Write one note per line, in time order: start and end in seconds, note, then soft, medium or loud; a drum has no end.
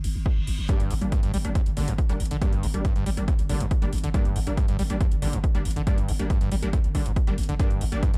0.00 reverse cymbal medium
0.04 0.15 G1 medium
0.04 open hi-hat loud
0.15 0.26 G1 medium
0.26 kick loud
0.37 0.47 G1 medium
0.47 0.58 G1 loud
0.47 open hi-hat loud
0.58 0.69 G1 medium
0.69 0.92 G2 medium
0.69 0.79 G3 loud
0.69 0.79 A#3 medium
0.69 0.79 D4 loud
0.69 kick loud
0.69 closed hi-hat medium
0.80 0.90 G1 medium
0.80 closed hi-hat medium
0.90 1.01 G1 loud
0.90 0.94 A2 medium
0.90 open hi-hat loud
1.01 1.12 G1 medium
1.01 1.11 G3 medium
1.01 1.11 A#3 medium
1.01 1.11 D4 medium
1.01 closed hi-hat medium
1.12 1.21 G2 medium
1.12 kick loud
1.12 closed hi-hat medium
1.23 1.33 G1 medium
1.23 1.32 G2 loud
1.23 closed hi-hat medium
1.34 1.44 G1 loud
1.34 1.37 G3 loud
1.34 open hi-hat loud
1.45 1.55 G1 medium
1.45 1.51 G3 loud
1.45 1.51 A#3 medium
1.45 1.51 D4 loud
1.45 closed hi-hat medium
1.55 1.61 F2 medium
1.55 kick loud
1.55 closed hi-hat medium
1.66 1.76 G1 medium
1.66 closed hi-hat medium
1.77 1.87 G1 loud
1.77 1.89 D3 medium
1.77 1.83 G3 medium
1.77 1.83 A#3 medium
1.77 1.83 D4 medium
1.77 open hi-hat loud
1.88 1.98 G1 medium
1.88 1.94 G2 medium
1.88 closed hi-hat medium
1.98 kick loud
1.98 closed hi-hat medium
2.09 2.19 G1 medium
2.09 2.13 G3 medium
2.09 2.16 G3 medium
2.09 2.16 A#3 medium
2.09 2.16 D4 loud
2.09 closed hi-hat medium
2.20 2.30 G1 loud
2.20 open hi-hat loud
2.25 closed hi-hat medium
2.31 2.41 G1 medium
2.31 2.37 D3 medium
2.31 closed hi-hat medium
2.42 2.65 G2 medium
2.42 2.52 G3 loud
2.42 2.52 A#3 medium
2.42 2.52 D4 loud
2.42 kick loud
2.42 closed hi-hat medium
2.53 2.63 G1 medium
2.53 closed hi-hat medium
2.63 2.74 G1 loud
2.63 2.67 A2 medium
2.63 open hi-hat loud
2.74 2.85 G1 medium
2.74 2.84 G3 medium
2.74 2.84 A#3 medium
2.74 2.84 D4 medium
2.74 closed hi-hat medium
2.85 2.94 G2 medium
2.85 kick loud
2.85 closed hi-hat medium
2.96 3.06 G1 medium
2.96 3.04 G2 loud
2.96 closed hi-hat medium
3.06 3.17 G1 loud
3.06 3.10 G3 loud
3.06 open hi-hat loud
3.17 3.28 G1 medium
3.17 3.23 G3 medium
3.17 3.23 A#3 medium
3.17 3.23 D4 loud
3.17 closed hi-hat medium
3.28 3.34 F2 medium
3.28 kick loud
3.28 closed hi-hat medium
3.39 3.49 G1 medium
3.39 closed hi-hat medium
3.49 3.60 G1 loud
3.49 3.62 D3 medium
3.49 3.56 G3 medium
3.49 3.56 A#3 medium
3.49 3.56 D4 medium
3.49 open hi-hat loud
3.60 3.71 G1 medium
3.60 3.66 G2 medium
3.60 closed hi-hat medium
3.71 kick loud
3.71 closed hi-hat medium
3.82 3.92 G1 medium
3.82 3.86 G3 medium
3.82 3.88 G3 medium
3.82 3.88 A#3 medium
3.82 3.88 D4 loud
3.82 closed hi-hat medium
3.93 4.03 G1 loud
3.93 open hi-hat loud
3.98 closed hi-hat medium
4.04 4.14 G1 medium
4.04 4.09 D3 medium
4.04 closed hi-hat medium
4.14 4.37 G2 medium
4.14 4.24 G3 loud
4.14 4.24 A#3 medium
4.14 4.24 D4 loud
4.14 kick loud
4.14 closed hi-hat medium
4.25 4.35 G1 medium
4.25 closed hi-hat soft
4.36 4.46 G1 loud
4.36 4.39 A2 medium
4.36 open hi-hat loud
4.47 4.57 G1 medium
4.47 4.57 G3 medium
4.47 4.57 A#3 medium
4.47 4.57 D4 medium
4.47 closed hi-hat medium
4.57 4.66 G2 medium
4.57 kick loud
4.57 closed hi-hat medium
4.68 4.78 G1 medium
4.68 4.77 G2 loud
4.68 closed hi-hat medium
4.79 4.89 G1 loud
4.79 4.83 G3 loud
4.79 open hi-hat loud
4.90 5.00 G1 medium
4.90 4.96 G3 loud
4.90 4.96 A#3 medium
4.90 4.96 D4 loud
4.90 closed hi-hat medium
5.01 5.07 F2 medium
5.01 kick loud
5.01 closed hi-hat medium
5.12 5.22 G1 medium
5.12 closed hi-hat medium
5.22 5.33 G1 loud
5.22 5.35 D3 medium
5.22 5.29 G3 medium
5.22 5.29 A#3 medium
5.22 5.29 D4 medium
5.22 open hi-hat loud
5.33 5.44 G1 medium
5.33 5.39 G2 medium
5.33 closed hi-hat medium
5.44 kick loud
5.44 closed hi-hat medium
5.55 5.65 G1 medium
5.55 5.61 G3 loud
5.55 5.58 G3 medium
5.55 5.61 A#3 medium
5.55 5.61 D4 loud
5.55 closed hi-hat medium
5.65 5.76 G1 loud
5.65 open hi-hat loud
5.71 closed hi-hat medium
5.76 5.87 G1 medium
5.76 5.82 D3 medium
5.76 closed hi-hat medium
5.87 6.10 G2 medium
5.87 5.97 G3 loud
5.87 5.97 A#3 medium
5.87 5.97 D4 loud
5.87 kick loud
5.87 closed hi-hat medium
5.98 6.08 G1 medium
5.98 closed hi-hat soft
6.08 6.19 G1 loud
6.08 6.12 A2 medium
6.08 open hi-hat loud
6.19 6.30 G1 medium
6.19 6.29 G3 medium
6.19 6.29 A#3 medium
6.19 6.29 D4 medium
6.19 closed hi-hat medium
6.30 6.39 G2 medium
6.30 kick loud
6.30 closed hi-hat medium
6.41 6.51 G1 medium
6.41 6.50 G2 loud
6.41 closed hi-hat medium
6.52 6.62 G1 loud
6.52 6.55 G3 loud
6.52 open hi-hat loud
6.63 6.73 G1 medium
6.63 6.69 G3 medium
6.63 6.69 A#3 medium
6.63 6.69 D4 loud
6.63 closed hi-hat medium
6.73 6.79 F2 medium
6.73 kick loud
6.73 closed hi-hat medium
6.84 6.94 G1 medium
6.84 closed hi-hat medium
6.95 7.05 G1 medium
6.95 7.07 D3 medium
6.95 7.01 G3 medium
6.95 7.01 A#3 medium
6.95 7.01 D4 medium
6.95 kick medium
6.95 open hi-hat loud
7.06 7.16 G1 medium
7.06 7.12 G2 medium
7.06 closed hi-hat medium
7.16 kick loud
7.16 closed hi-hat medium
7.27 7.37 G1 medium
7.27 7.34 G3 loud
7.27 7.31 G3 medium
7.27 7.34 A#3 medium
7.27 7.34 D4 loud
7.27 closed hi-hat medium
7.38 7.48 G1 loud
7.38 open hi-hat loud
7.43 closed hi-hat medium
7.49 7.59 G1 medium
7.49 7.55 D3 medium
7.49 closed hi-hat medium
7.59 7.83 G2 medium
7.59 7.70 G3 loud
7.59 7.70 A#3 medium
7.59 7.70 D4 loud
7.59 kick loud
7.59 closed hi-hat medium
7.71 7.80 G1 medium
7.71 closed hi-hat soft
7.81 7.91 G1 loud
7.81 7.85 A2 medium
7.81 open hi-hat loud
7.92 8.02 G1 medium
7.92 8.02 G3 medium
7.92 8.02 A#3 medium
7.92 8.02 D4 medium
7.92 closed hi-hat soft
8.03 8.12 G2 medium
8.03 kick loud
8.03 closed hi-hat medium
8.14 8.18 G1 medium
8.14 8.17 F2 medium
8.14 closed hi-hat medium